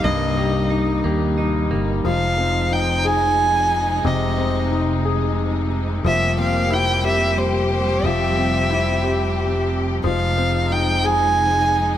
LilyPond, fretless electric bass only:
\new Staff \with { instrumentName = "Fretless electric bass" } { \clef bass \time 6/8 \key f \minor \tempo 4. = 60 c,4. ees,4 g,,8 | f,,2. | f,,2. | f,,2. |
f,,2. | f,,2. | }